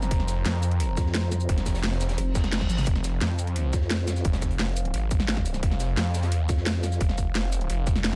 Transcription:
Already playing: ambient pad F3 C4 C5 A#5
0.02 snare, shaker
0.11 detuned saw bass F1, kick, closed hi-hat
0.20 snare
0.28 snare, closed hi-hat, shaker
0.45 detuned saw bass F2, snare, closed hi-hat
0.63 closed hi-hat, shaker
0.71 closed hi-hat
0.80 closed hi-hat
0.97 wobble bass F2, kick, snare, closed hi-hat, shaker
1.07 snare
1.14 snare, closed hi-hat, shaker
1.22 snare
1.32 snare, closed hi-hat, shaker
1.40 shaker
1.49 detuned saw bass F1, kick, closed hi-hat
1.57 snare, closed hi-hat
1.66 kick, snare, closed hi-hat, shaker
1.74 snare, closed hi-hat, shaker
1.83 detuned saw bass F1, snare, closed hi-hat
1.91 snare, closed hi-hat
2.01 snare, closed hi-hat, shaker
2.09 snare, closed hi-hat
2.18 wobble bass F1, closed hi-hat, reverse cymbal
2.35 detuned saw bass F1, kick, snare, closed hi-hat, shaker
2.43 snare, closed hi-hat
2.52 snare, closed hi-hat, shaker
2.61 kick, snare
2.69 detuned saw bass G#1, snare, closed hi-hat, high tom, shaker
2.78 snare, closed hi-hat, mid tom, shaker
2.87 detuned saw bass F1, ambient pad F5, kick, closed hi-hat
2.96 snare
3.04 snare, closed hi-hat, shaker
3.21 detuned saw bass F2, snare, closed hi-hat
3.39 closed hi-hat, shaker
3.47 closed hi-hat
3.56 closed hi-hat
3.73 wobble bass F2, kick, snare, closed hi-hat, shaker
3.82 snare
3.90 snare, closed hi-hat, shaker
3.99 snare
4.07 snare, closed hi-hat, shaker
4.16 snare, shaker
4.24 detuned saw bass F1, kick, closed hi-hat
4.33 snare, closed hi-hat
4.42 kick, snare, closed hi-hat, shaker
4.51 closed hi-hat
4.59 detuned saw bass F1, snare, closed hi-hat
4.67 snare
4.77 closed hi-hat, shaker
4.85 closed hi-hat
4.94 detuned saw bass G#1, closed hi-hat
5.11 kick, closed hi-hat, shaker
5.20 snare, closed hi-hat
5.28 snare, closed hi-hat, shaker
5.37 kick, snare
5.46 closed hi-hat, shaker
5.54 snare, shaker
5.63 detuned saw bass F1, kick, closed hi-hat
5.71 snare
5.80 snare, closed hi-hat, shaker
5.97 detuned saw bass F2, snare, closed hi-hat
6.14 snare, closed hi-hat, shaker
6.23 snare, closed hi-hat
6.32 closed hi-hat
6.49 wobble bass F2, kick, snare, closed hi-hat, shaker
6.57 snare
6.66 snare, closed hi-hat, shaker
6.74 snare
6.82 snare, closed hi-hat, shaker
6.92 snare, shaker
7.00 detuned saw bass F1, kick, closed hi-hat
7.09 snare
7.18 kick, closed hi-hat, shaker
7.35 detuned saw bass F1, snare, closed hi-hat
7.52 closed hi-hat, shaker
7.61 closed hi-hat
7.70 detuned saw bass F1, closed hi-hat
7.87 kick, closed hi-hat, shaker
7.96 snare, closed hi-hat
8.04 snare, closed hi-hat, shaker

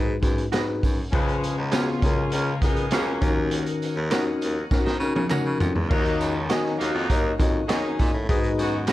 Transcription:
Already playing: baritone saxophone G#2, tine electric piano G#2 D#4 F#4 G#4 B4
0.22 baritone saxophone F#2, tine electric piano D#4 F#4 G#4 B4, kick, snare, closed hi-hat, tambourine
0.38 closed hi-hat
0.52 tine electric piano D#4 F#4 G#4 B4, clean electric guitar F#4 B4 D#5, snare, clap, closed hi-hat, tambourine
0.67 baritone saxophone F#2
0.83 baritone saxophone F#2, kick, open hi-hat, tambourine
1.11 baritone saxophone C#2, tine electric piano C#3 C#4 F4 G#4 B4, horn section F3 G#3 C#4, tonewheel organ C#5 F5 G#5, kick, closed hi-hat
1.29 closed hi-hat
1.44 closed hi-hat, tambourine
1.57 baritone saxophone C#2, horn section G#3 B3 D#4
1.72 horn section A#3 C#4 F4, tine electric piano B3 C#4 F4 G#4, clean electric guitar G#4 B4 F5, snare, clap, closed hi-hat, tambourine
1.88 snare
2.02 baritone saxophone C#2, tine electric piano C#3 C#4 F4 G#4 A#4, tonewheel organ A#4, kick, snare, closed hi-hat, tambourine
2.32 baritone saxophone C#2, horn section A#3 C#4 F4, closed hi-hat, tambourine
2.61 horn section G#3 B3 D#4, tine electric piano C#4 F4 G#4 A#4, kick, snare, closed hi-hat, tambourine
2.76 closed hi-hat
2.91 baritone saxophone C#2, horn section F#3 A#3 C#4, tine electric piano C#4 F4 G#4 A#4, clean electric guitar G#4 C#5 F5, snare, clap, closed hi-hat, tambourine
3.21 baritone saxophone D#2, tine electric piano D#3 C#4 D#4 F#4 A#4, tonewheel organ D#5 F#5, kick, closed hi-hat, tambourine
3.51 closed hi-hat
3.66 closed hi-hat
3.82 closed hi-hat, tambourine
3.96 baritone saxophone D#2
4.11 tine electric piano C#4 D#4 F4 A#4, clean electric guitar A#4 C#5 F#5, snare, clap, closed hi-hat, tambourine
4.19 tine electric piano F#4
4.41 baritone saxophone D#2, closed hi-hat, tambourine
4.71 tine electric piano C#4 D#4 F#4 A#4, kick, snare, tambourine
4.86 baritone saxophone D#3, snare
5.00 baritone saxophone C#3, tine electric piano C#4 D#4 F#4 A#4, tambourine
5.15 baritone saxophone C#3, high tom
5.30 tine electric piano C#4 D#4 F#4 A#4, clean electric guitar A#4 C#5 F#5, clap, mid tom, tambourine
5.46 baritone saxophone C#3
5.60 baritone saxophone F2, floor tom, tambourine
5.75 baritone saxophone E2, floor tom
5.89 baritone saxophone D#2, tonewheel organ D#3 A#3 C#4 F#4, tine electric piano D#3 D#4 F4 A#4 C#5 D#5, horn section F#3 A#3 D#4, kick, crash
5.98 tine electric piano F#4
6.05 closed hi-hat
6.20 baritone saxophone C#2, closed hi-hat, tambourine
6.34 horn section C#4 D#4 F#4
6.49 horn section C#4 D#4 F#4, tine electric piano D#4 F#4 A#4 C#5 D#5, clean electric guitar F#4 C#5 D#5, snare, clap, closed hi-hat, tambourine
6.65 snare
6.78 baritone saxophone D#2, horn section F#3 A#3 D#4, snare, closed hi-hat, tambourine
6.95 baritone saxophone F2
7.10 baritone saxophone D#2, tine electric piano D#4 F#4 A#4 C#5 D#5, kick, closed hi-hat, tambourine
7.39 baritone saxophone F2, tine electric piano D#4 F#4 A#4 C#5 D#5, kick, closed hi-hat, tambourine
7.68 baritone saxophone F#2, horn section C#4 D#4 G#4, tine electric piano D#4 F#4 A#4 C#5 D#5, clean electric guitar F#4 C#5 D#5, snare, clap, closed hi-hat, tambourine
7.99 baritone saxophone A#2, kick, closed hi-hat, tambourine
8.14 baritone saxophone A2
8.28 baritone saxophone G#2, tine electric piano G#2 D#4 F#4 G#4 B4 D#5, tonewheel organ D#3 G#3 B3 F#4, kick, closed hi-hat, tambourine
8.44 closed hi-hat
8.58 baritone saxophone F#2, horn section B3 D#4 F#4, closed hi-hat, tambourine
8.87 horn section G#3 B3 D#4, tine electric piano D#4 F#4 G#4, clean electric guitar F#4 B4, snare, clap, closed hi-hat, tambourine

